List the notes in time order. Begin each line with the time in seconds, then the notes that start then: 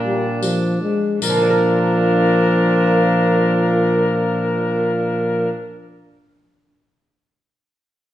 Already playing: A#2 A#3 D4
0.04 G3
0.43 F3, tambourine
0.81 G#3
1.20 A#2 F3 D4 A#4, tambourine
1.29 F3
1.36 A#3
1.43 D4
1.50 A#4